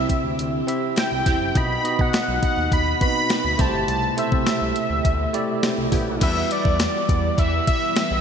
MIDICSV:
0, 0, Header, 1, 8, 480
1, 0, Start_track
1, 0, Key_signature, 1, "minor"
1, 0, Tempo, 582524
1, 1280, Time_signature, 4, 2, 24, 8
1, 6764, End_track
2, 0, Start_track
2, 0, Title_t, "Analog synth lead"
2, 0, Program_c, 0, 81
2, 0, Note_on_c, 0, 76, 88
2, 531, Note_off_c, 0, 76, 0
2, 815, Note_on_c, 0, 79, 98
2, 1294, Note_on_c, 0, 83, 115
2, 1306, Note_off_c, 0, 79, 0
2, 1655, Note_on_c, 0, 78, 94
2, 1668, Note_off_c, 0, 83, 0
2, 2008, Note_off_c, 0, 78, 0
2, 2014, Note_on_c, 0, 78, 97
2, 2231, Note_off_c, 0, 78, 0
2, 2252, Note_on_c, 0, 83, 110
2, 2470, Note_off_c, 0, 83, 0
2, 2491, Note_on_c, 0, 83, 113
2, 2972, Note_on_c, 0, 81, 98
2, 2984, Note_off_c, 0, 83, 0
2, 3206, Note_off_c, 0, 81, 0
2, 3212, Note_on_c, 0, 81, 100
2, 3430, Note_off_c, 0, 81, 0
2, 3451, Note_on_c, 0, 76, 90
2, 4853, Note_off_c, 0, 76, 0
2, 5130, Note_on_c, 0, 76, 96
2, 5370, Note_on_c, 0, 74, 96
2, 5383, Note_off_c, 0, 76, 0
2, 6085, Note_off_c, 0, 74, 0
2, 6089, Note_on_c, 0, 76, 104
2, 6308, Note_off_c, 0, 76, 0
2, 6324, Note_on_c, 0, 76, 109
2, 6764, Note_off_c, 0, 76, 0
2, 6764, End_track
3, 0, Start_track
3, 0, Title_t, "Analog polysynth"
3, 0, Program_c, 1, 90
3, 799, Note_on_c, 1, 67, 91
3, 800, Note_on_c, 1, 60, 84
3, 800, Note_on_c, 1, 64, 85
3, 902, Note_off_c, 1, 60, 0
3, 902, Note_off_c, 1, 64, 0
3, 902, Note_off_c, 1, 67, 0
3, 1041, Note_on_c, 1, 60, 93
3, 1041, Note_on_c, 1, 64, 95
3, 1041, Note_on_c, 1, 67, 103
3, 1245, Note_off_c, 1, 60, 0
3, 1245, Note_off_c, 1, 64, 0
3, 1245, Note_off_c, 1, 67, 0
3, 2720, Note_on_c, 1, 59, 85
3, 2720, Note_on_c, 1, 63, 82
3, 2720, Note_on_c, 1, 66, 95
3, 2822, Note_off_c, 1, 59, 0
3, 2822, Note_off_c, 1, 63, 0
3, 2822, Note_off_c, 1, 66, 0
3, 2958, Note_on_c, 1, 64, 93
3, 2959, Note_on_c, 1, 60, 99
3, 2959, Note_on_c, 1, 67, 109
3, 3163, Note_off_c, 1, 64, 0
3, 3164, Note_off_c, 1, 60, 0
3, 3164, Note_off_c, 1, 67, 0
3, 4641, Note_on_c, 1, 64, 88
3, 4641, Note_on_c, 1, 67, 91
3, 4642, Note_on_c, 1, 60, 85
3, 4743, Note_off_c, 1, 60, 0
3, 4743, Note_off_c, 1, 64, 0
3, 4743, Note_off_c, 1, 67, 0
3, 4878, Note_on_c, 1, 59, 99
3, 4878, Note_on_c, 1, 67, 108
3, 4879, Note_on_c, 1, 64, 101
3, 5109, Note_off_c, 1, 67, 0
3, 5111, Note_off_c, 1, 59, 0
3, 5119, Note_on_c, 1, 67, 81
3, 5119, Note_on_c, 1, 71, 80
3, 5120, Note_on_c, 1, 59, 74
3, 5185, Note_off_c, 1, 64, 0
3, 6764, Note_off_c, 1, 59, 0
3, 6764, Note_off_c, 1, 67, 0
3, 6764, Note_off_c, 1, 71, 0
3, 6764, End_track
4, 0, Start_track
4, 0, Title_t, "Tine electric piano"
4, 0, Program_c, 2, 4
4, 0, Control_c, 2, 64, 127
4, 0, Note_on_c, 2, 60, 65
4, 0, Note_on_c, 2, 64, 67
4, 0, Note_on_c, 2, 67, 64
4, 0, Note_on_c, 2, 76, 76
4, 258, Note_off_c, 2, 60, 0
4, 259, Note_off_c, 2, 64, 0
4, 261, Note_off_c, 2, 67, 0
4, 263, Note_off_c, 2, 76, 0
4, 553, Note_on_c, 2, 60, 80
4, 558, Note_on_c, 2, 64, 73
4, 561, Note_on_c, 2, 67, 73
4, 566, Note_on_c, 2, 76, 88
4, 1053, Note_off_c, 2, 60, 0
4, 1055, Note_off_c, 2, 64, 0
4, 1057, Note_off_c, 2, 67, 0
4, 1059, Note_off_c, 2, 76, 0
4, 1274, Note_on_c, 2, 59, 67
4, 1278, Note_on_c, 2, 63, 62
4, 1282, Note_on_c, 2, 66, 66
4, 1285, Note_on_c, 2, 75, 80
4, 1290, Control_c, 2, 64, 0
4, 1439, Control_c, 2, 64, 127
4, 1443, Note_off_c, 2, 59, 0
4, 1444, Note_off_c, 2, 63, 0
4, 1446, Note_off_c, 2, 66, 0
4, 1448, Note_off_c, 2, 75, 0
4, 1517, Note_on_c, 2, 59, 71
4, 1520, Note_on_c, 2, 63, 64
4, 1523, Note_on_c, 2, 66, 61
4, 1526, Note_on_c, 2, 75, 81
4, 2180, Note_off_c, 2, 59, 0
4, 2181, Note_off_c, 2, 63, 0
4, 2183, Note_off_c, 2, 66, 0
4, 2185, Note_off_c, 2, 75, 0
4, 2474, Note_on_c, 2, 59, 65
4, 2477, Note_on_c, 2, 60, 49
4, 2482, Note_on_c, 2, 66, 62
4, 2485, Note_on_c, 2, 71, 76
4, 2532, Note_off_c, 2, 60, 0
4, 2532, Note_on_c, 2, 63, 62
4, 2949, Note_on_c, 2, 57, 76
4, 2952, Note_on_c, 2, 64, 77
4, 2956, Note_on_c, 2, 67, 74
4, 2957, Note_off_c, 2, 59, 0
4, 2959, Note_on_c, 2, 72, 90
4, 2961, Note_off_c, 2, 66, 0
4, 2963, Note_off_c, 2, 71, 0
4, 2973, Control_c, 2, 64, 0
4, 2986, Note_off_c, 2, 63, 0
4, 3093, Control_c, 2, 64, 127
4, 3338, Note_off_c, 2, 57, 0
4, 3340, Note_off_c, 2, 64, 0
4, 3342, Note_off_c, 2, 67, 0
4, 3344, Note_off_c, 2, 72, 0
4, 3435, Note_on_c, 2, 57, 74
4, 3437, Note_on_c, 2, 64, 66
4, 3440, Note_on_c, 2, 67, 64
4, 3444, Note_on_c, 2, 72, 80
4, 4099, Note_off_c, 2, 57, 0
4, 4100, Note_off_c, 2, 64, 0
4, 4101, Note_off_c, 2, 67, 0
4, 4104, Note_off_c, 2, 72, 0
4, 4396, Note_on_c, 2, 57, 80
4, 4401, Note_on_c, 2, 64, 75
4, 4402, Note_on_c, 2, 67, 77
4, 4405, Note_on_c, 2, 74, 91
4, 4894, Note_off_c, 2, 57, 0
4, 4897, Note_off_c, 2, 64, 0
4, 4897, Note_off_c, 2, 67, 0
4, 4899, Note_off_c, 2, 74, 0
4, 5121, Note_on_c, 2, 55, 73
4, 5122, Note_on_c, 2, 64, 65
4, 5128, Note_on_c, 2, 66, 65
4, 5130, Note_on_c, 2, 71, 79
4, 5131, Control_c, 2, 64, 0
4, 5298, Control_c, 2, 64, 127
4, 5782, Note_off_c, 2, 55, 0
4, 5783, Note_off_c, 2, 64, 0
4, 5785, Note_off_c, 2, 66, 0
4, 5787, Note_off_c, 2, 71, 0
4, 6764, End_track
5, 0, Start_track
5, 0, Title_t, "String machine"
5, 0, Program_c, 3, 50
5, 0, Note_on_c, 3, 48, 75
5, 0, Note_on_c, 3, 60, 69
5, 0, Note_on_c, 3, 64, 69
5, 0, Note_on_c, 3, 67, 84
5, 1247, Note_off_c, 3, 64, 0
5, 1258, Note_off_c, 3, 48, 0
5, 1258, Note_off_c, 3, 60, 0
5, 1259, Note_off_c, 3, 67, 0
5, 1283, Note_on_c, 3, 47, 73
5, 1283, Note_on_c, 3, 63, 72
5, 1284, Note_on_c, 3, 66, 85
5, 2945, Note_off_c, 3, 63, 0
5, 2945, Note_off_c, 3, 66, 0
5, 2953, Note_on_c, 3, 57, 70
5, 2956, Note_on_c, 3, 48, 74
5, 2956, Note_on_c, 3, 67, 84
5, 5088, Note_off_c, 3, 47, 0
5, 5095, Note_off_c, 3, 57, 0
5, 5096, Note_off_c, 3, 48, 0
5, 5096, Note_off_c, 3, 67, 0
5, 5123, Note_on_c, 3, 52, 83
5, 5125, Note_on_c, 3, 59, 72
5, 5126, Note_on_c, 3, 55, 86
5, 5127, Note_on_c, 3, 78, 70
5, 6764, Note_off_c, 3, 52, 0
5, 6764, Note_off_c, 3, 55, 0
5, 6764, Note_off_c, 3, 59, 0
5, 6764, Note_off_c, 3, 78, 0
5, 6764, End_track
6, 0, Start_track
6, 0, Title_t, "Overdriven electric guitar"
6, 0, Program_c, 4, 29
6, 5113, Note_on_c, 4, 52, 81
6, 5133, Note_on_c, 4, 59, 87
6, 5148, Note_on_c, 4, 64, 94
6, 6070, Note_off_c, 4, 52, 0
6, 6073, Note_on_c, 4, 52, 58
6, 6077, Note_off_c, 4, 59, 0
6, 6087, Note_on_c, 4, 59, 68
6, 6093, Note_off_c, 4, 64, 0
6, 6096, Note_on_c, 4, 64, 72
6, 6552, Note_off_c, 4, 52, 0
6, 6555, Note_on_c, 4, 52, 60
6, 6557, Note_off_c, 4, 59, 0
6, 6567, Note_on_c, 4, 59, 60
6, 6575, Note_off_c, 4, 64, 0
6, 6579, Note_on_c, 4, 64, 65
6, 6764, Note_off_c, 4, 52, 0
6, 6764, Note_off_c, 4, 59, 0
6, 6764, Note_off_c, 4, 64, 0
6, 6764, End_track
7, 0, Start_track
7, 0, Title_t, "Analog synth bass"
7, 0, Program_c, 5, 38
7, 200, Note_on_c, 5, 38, 82
7, 290, Note_off_c, 5, 38, 0
7, 318, Note_on_c, 5, 38, 94
7, 499, Note_off_c, 5, 38, 0
7, 917, Note_on_c, 5, 36, 89
7, 1008, Note_off_c, 5, 36, 0
7, 1038, Note_on_c, 5, 28, 93
7, 1129, Note_off_c, 5, 28, 0
7, 1158, Note_on_c, 5, 30, 82
7, 1249, Note_off_c, 5, 30, 0
7, 1280, Note_on_c, 5, 35, 113
7, 1460, Note_off_c, 5, 35, 0
7, 1640, Note_on_c, 5, 47, 91
7, 1730, Note_off_c, 5, 47, 0
7, 1880, Note_on_c, 5, 35, 87
7, 1970, Note_off_c, 5, 35, 0
7, 2120, Note_on_c, 5, 39, 85
7, 2210, Note_off_c, 5, 39, 0
7, 2238, Note_on_c, 5, 39, 93
7, 2419, Note_off_c, 5, 39, 0
7, 2837, Note_on_c, 5, 38, 81
7, 2928, Note_off_c, 5, 38, 0
7, 2960, Note_on_c, 5, 36, 103
7, 3050, Note_off_c, 5, 36, 0
7, 3075, Note_on_c, 5, 31, 79
7, 3167, Note_off_c, 5, 31, 0
7, 3196, Note_on_c, 5, 36, 110
7, 3378, Note_off_c, 5, 36, 0
7, 3558, Note_on_c, 5, 48, 96
7, 3649, Note_off_c, 5, 48, 0
7, 3799, Note_on_c, 5, 36, 86
7, 3889, Note_off_c, 5, 36, 0
7, 4036, Note_on_c, 5, 38, 86
7, 4127, Note_off_c, 5, 38, 0
7, 4159, Note_on_c, 5, 38, 95
7, 4339, Note_off_c, 5, 38, 0
7, 4759, Note_on_c, 5, 36, 91
7, 4850, Note_off_c, 5, 36, 0
7, 4878, Note_on_c, 5, 33, 96
7, 4969, Note_off_c, 5, 33, 0
7, 5000, Note_on_c, 5, 35, 84
7, 5090, Note_off_c, 5, 35, 0
7, 5120, Note_on_c, 5, 40, 100
7, 5300, Note_off_c, 5, 40, 0
7, 5480, Note_on_c, 5, 40, 96
7, 5660, Note_off_c, 5, 40, 0
7, 5839, Note_on_c, 5, 40, 98
7, 6020, Note_off_c, 5, 40, 0
7, 6082, Note_on_c, 5, 40, 100
7, 6261, Note_off_c, 5, 40, 0
7, 6680, Note_on_c, 5, 35, 96
7, 6764, Note_off_c, 5, 35, 0
7, 6764, End_track
8, 0, Start_track
8, 0, Title_t, "Drums"
8, 78, Note_on_c, 9, 36, 84
8, 80, Note_on_c, 9, 42, 76
8, 160, Note_off_c, 9, 36, 0
8, 163, Note_off_c, 9, 42, 0
8, 322, Note_on_c, 9, 42, 87
8, 404, Note_off_c, 9, 42, 0
8, 563, Note_on_c, 9, 42, 73
8, 646, Note_off_c, 9, 42, 0
8, 797, Note_on_c, 9, 39, 79
8, 804, Note_on_c, 9, 38, 98
8, 804, Note_on_c, 9, 42, 79
8, 880, Note_off_c, 9, 39, 0
8, 886, Note_off_c, 9, 42, 0
8, 887, Note_off_c, 9, 38, 0
8, 1039, Note_on_c, 9, 36, 88
8, 1039, Note_on_c, 9, 42, 71
8, 1121, Note_off_c, 9, 36, 0
8, 1122, Note_off_c, 9, 42, 0
8, 1280, Note_on_c, 9, 36, 100
8, 1282, Note_on_c, 9, 42, 88
8, 1363, Note_off_c, 9, 36, 0
8, 1364, Note_off_c, 9, 42, 0
8, 1524, Note_on_c, 9, 42, 78
8, 1607, Note_off_c, 9, 42, 0
8, 1641, Note_on_c, 9, 36, 90
8, 1723, Note_off_c, 9, 36, 0
8, 1762, Note_on_c, 9, 39, 76
8, 1764, Note_on_c, 9, 38, 107
8, 1764, Note_on_c, 9, 42, 91
8, 1844, Note_off_c, 9, 39, 0
8, 1846, Note_off_c, 9, 38, 0
8, 1846, Note_off_c, 9, 42, 0
8, 2000, Note_on_c, 9, 36, 85
8, 2001, Note_on_c, 9, 42, 74
8, 2082, Note_off_c, 9, 36, 0
8, 2083, Note_off_c, 9, 42, 0
8, 2239, Note_on_c, 9, 36, 89
8, 2242, Note_on_c, 9, 42, 93
8, 2321, Note_off_c, 9, 36, 0
8, 2324, Note_off_c, 9, 42, 0
8, 2481, Note_on_c, 9, 36, 90
8, 2481, Note_on_c, 9, 42, 72
8, 2563, Note_off_c, 9, 42, 0
8, 2564, Note_off_c, 9, 36, 0
8, 2720, Note_on_c, 9, 39, 77
8, 2721, Note_on_c, 9, 38, 105
8, 2721, Note_on_c, 9, 42, 83
8, 2802, Note_off_c, 9, 39, 0
8, 2803, Note_off_c, 9, 42, 0
8, 2804, Note_off_c, 9, 38, 0
8, 2958, Note_on_c, 9, 42, 69
8, 2960, Note_on_c, 9, 36, 106
8, 3040, Note_off_c, 9, 42, 0
8, 3043, Note_off_c, 9, 36, 0
8, 3200, Note_on_c, 9, 42, 88
8, 3282, Note_off_c, 9, 42, 0
8, 3442, Note_on_c, 9, 42, 78
8, 3525, Note_off_c, 9, 42, 0
8, 3560, Note_on_c, 9, 36, 88
8, 3642, Note_off_c, 9, 36, 0
8, 3680, Note_on_c, 9, 38, 109
8, 3680, Note_on_c, 9, 42, 91
8, 3681, Note_on_c, 9, 39, 75
8, 3762, Note_off_c, 9, 38, 0
8, 3763, Note_off_c, 9, 42, 0
8, 3764, Note_off_c, 9, 39, 0
8, 3921, Note_on_c, 9, 42, 73
8, 4003, Note_off_c, 9, 42, 0
8, 4159, Note_on_c, 9, 36, 90
8, 4161, Note_on_c, 9, 42, 89
8, 4242, Note_off_c, 9, 36, 0
8, 4244, Note_off_c, 9, 42, 0
8, 4401, Note_on_c, 9, 42, 75
8, 4483, Note_off_c, 9, 42, 0
8, 4640, Note_on_c, 9, 42, 85
8, 4641, Note_on_c, 9, 38, 102
8, 4643, Note_on_c, 9, 39, 75
8, 4723, Note_off_c, 9, 38, 0
8, 4723, Note_off_c, 9, 42, 0
8, 4726, Note_off_c, 9, 39, 0
8, 4878, Note_on_c, 9, 46, 70
8, 4880, Note_on_c, 9, 36, 89
8, 4960, Note_off_c, 9, 46, 0
8, 4962, Note_off_c, 9, 36, 0
8, 5119, Note_on_c, 9, 42, 96
8, 5119, Note_on_c, 9, 49, 92
8, 5121, Note_on_c, 9, 36, 101
8, 5202, Note_off_c, 9, 42, 0
8, 5202, Note_off_c, 9, 49, 0
8, 5203, Note_off_c, 9, 36, 0
8, 5364, Note_on_c, 9, 42, 80
8, 5446, Note_off_c, 9, 42, 0
8, 5481, Note_on_c, 9, 36, 91
8, 5563, Note_off_c, 9, 36, 0
8, 5600, Note_on_c, 9, 54, 73
8, 5602, Note_on_c, 9, 38, 119
8, 5602, Note_on_c, 9, 42, 99
8, 5603, Note_on_c, 9, 39, 80
8, 5682, Note_off_c, 9, 54, 0
8, 5684, Note_off_c, 9, 38, 0
8, 5684, Note_off_c, 9, 42, 0
8, 5685, Note_off_c, 9, 39, 0
8, 5841, Note_on_c, 9, 36, 89
8, 5844, Note_on_c, 9, 42, 77
8, 5923, Note_off_c, 9, 36, 0
8, 5927, Note_off_c, 9, 42, 0
8, 6081, Note_on_c, 9, 36, 94
8, 6085, Note_on_c, 9, 42, 89
8, 6164, Note_off_c, 9, 36, 0
8, 6167, Note_off_c, 9, 42, 0
8, 6324, Note_on_c, 9, 36, 95
8, 6324, Note_on_c, 9, 42, 75
8, 6406, Note_off_c, 9, 36, 0
8, 6406, Note_off_c, 9, 42, 0
8, 6561, Note_on_c, 9, 39, 80
8, 6563, Note_on_c, 9, 38, 103
8, 6563, Note_on_c, 9, 42, 84
8, 6563, Note_on_c, 9, 54, 66
8, 6644, Note_off_c, 9, 39, 0
8, 6645, Note_off_c, 9, 42, 0
8, 6645, Note_off_c, 9, 54, 0
8, 6646, Note_off_c, 9, 38, 0
8, 6764, End_track
0, 0, End_of_file